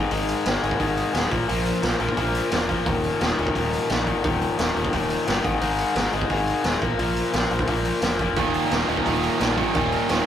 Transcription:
Already playing: G#2 D#3 G#3
0.11 G#1 G#2 D#3 G#3, open hi-hat
0.28 open hi-hat
0.46 G#1 G#2 D#3 G#3, snare, open hi-hat
0.62 G#1 G#2 D#3 G#3, open hi-hat
0.71 kick
0.80 G#1 G#2 D#3 G#3, kick, open hi-hat
0.97 open hi-hat
1.14 D#1 G#2 D#3 G#3, snare, open hi-hat
1.31 A#1 A#2 F3 A#3, kick, open hi-hat
1.48 A#1 A#2 F3 A#3, open hi-hat
1.66 open hi-hat
1.83 A#1 A#2 F3 A#3, snare, open hi-hat
2.00 A#1 A#2 F3 A#3, open hi-hat
2.09 kick
2.17 A#1 A#2 F3 A#3, kick, open hi-hat
2.35 open hi-hat
2.51 F1 A#2 F3 A#3, snare, open hi-hat
2.68 A#2 F3 A#3, kick, open hi-hat
2.85 D#1 D#2 A#2 D#3, kick, open hi-hat
3.04 open hi-hat
3.21 D#1 D#2 A#2 D#3, snare, open hi-hat
3.38 D#1 D#2 A#2 D#3, open hi-hat
3.47 kick
3.55 D#1 D#2 A#2 D#3, kick, open hi-hat
3.73 open hi-hat
3.89 A#1 D#2 A#2 D#3, snare, open hi-hat
4.07 D#2 A#2 D#3, kick, open hi-hat
4.23 D#1 D#2 A#2 D#3, kick, open hi-hat
4.42 open hi-hat
4.58 D#1 D#2 A#2 D#3, snare, open hi-hat
4.75 D#1 D#2 A#2 D#3, open hi-hat
4.85 kick
4.92 D#1 D#2 A#2 D#3, kick, open hi-hat
5.10 open hi-hat
5.27 G1 D#2 A#2 D#3, snare, open hi-hat
5.44 G#1 G#2 D#3 G#3, kick, open hi-hat
5.61 G#1 G#2 D#3 G#3, open hi-hat
5.79 open hi-hat
5.95 G#1 G#2 D#3 G#3, snare, open hi-hat
6.13 G#1 G#2 D#3 G#3, open hi-hat
6.22 kick
6.30 G#1 G#2 D#3 G#3, kick, open hi-hat
6.47 open hi-hat
6.64 D#1 G#2 D#3 G#3, snare, open hi-hat
6.82 A#1 A#2 F3 A#3, kick, open hi-hat
6.98 A#1 A#2 F3 A#3, open hi-hat
7.16 open hi-hat
7.33 A#1 A#2 F3 A#3, snare, open hi-hat
7.51 A#1 A#2 F3 A#3, open hi-hat
7.59 kick
7.67 A#1 A#2 F3 A#3, kick, open hi-hat
7.85 open hi-hat
8.02 F1 A#2 F3 A#3, snare, open hi-hat
8.19 A#2 F3 A#3, kick, open hi-hat
8.36 D#1 D#2 A#2 D#3, kick, open hi-hat
8.54 open hi-hat
8.71 D#1 D#2 A#2 D#3, snare, open hi-hat
8.88 D#1 D#2 A#2 D#3, open hi-hat
8.97 kick
9.06 D#1 D#2 A#2 D#3, kick, open hi-hat
9.23 open hi-hat
9.40 A#1 D#2 A#2 D#3, snare, open hi-hat
9.57 D#2 A#2 D#3, kick, open hi-hat
9.75 D#1 D#2 A#2 D#3, kick, open hi-hat
9.92 open hi-hat
10.09 D#1 D#2 A#2 D#3, snare, open hi-hat

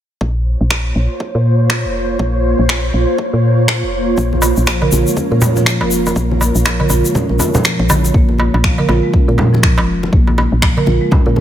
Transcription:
0.20 A#1 A#3 F4 C5 C#5, kick
0.61 A#1
0.70 finger snap, kick
0.96 A#1
1.20 kick
1.35 A#2
1.70 finger snap, kick
1.85 F1
2.19 A#1, kick
2.59 A#1
2.69 finger snap, kick
2.94 A#1
3.18 kick
3.33 A#2
3.68 finger snap, kick
3.83 F1
4.17 A#1 A#3 A#4, kick, shaker
4.33 high conga
4.42 darbuka ka, muted conga, shaker
4.57 A#1, shaker
4.67 F3, finger snap, kick, muted conga, darbuka tek, shaker
4.82 A#4, darbuka ka, darbuka dum
4.92 A#1 F4, muted conga, high conga, shaker
5.06 G#3, shaker
5.17 C#4, kick, high conga, shaker
5.31 A#2 A#4, muted conga
5.41 darbuka ka, darbuka tek, low conga, shaker
5.56 F3, muted conga, high conga, shaker
5.66 F3, finger snap, kick, shaker
5.81 F1, darbuka ka, muted conga
5.91 shaker
6.06 muted conga, darbuka tek, shaker
6.16 A#1 A#3, kick, shaker
6.31 high conga
6.41 darbuka ka, muted conga, shaker
6.55 A#1, shaker
6.65 F3, finger snap, kick, muted conga, darbuka tek, shaker
6.80 A#4, darbuka ka, darbuka dum
6.90 A#1 F4, muted conga, darbuka tek, high conga, shaker
7.05 G#3, shaker
7.15 C#4, kick, high conga, low conga, shaker
7.29 A#1 A#4, muted conga
7.39 darbuka ka, high conga, shaker
7.54 F3, muted conga, low conga, shaker
7.64 F3, finger snap, kick, shaker
7.79 A#1, kick, muted conga
7.90 darbuka ka, high conga, darbuka tek, darbuka dum, shaker
8.05 muted conga, shaker
8.14 A#1 A#3, kick
8.29 high conga
8.38 muted conga, darbuka ka
8.54 A#1, darbuka tek
8.64 F3, finger snap, kick, muted conga
8.78 A#4, darbuka ka, darbuka dum
8.89 A#1 F4, muted conga, darbuka tek, high conga
9.03 G#3
9.13 C#4, kick, high conga
9.28 A#2 A#4, muted conga
9.38 darbuka ka, darbuka tek, low conga
9.53 F3, muted conga, high conga
9.63 F3, finger snap, kick
9.78 F1, darbuka ka, muted conga, darbuka tek
10.03 muted conga
10.13 A#1 A#3, kick
10.27 darbuka tek, high conga
10.38 muted conga, darbuka ka
10.52 A#1
10.62 F3, finger snap, kick, muted conga, darbuka tek
10.77 A#4, darbuka ka, darbuka dum
10.86 A#1 F4, muted conga, high conga
11.01 G#3
11.11 C#4, kick, high conga, darbuka tek, low conga
11.26 A#2 A#4, muted conga
11.36 high conga

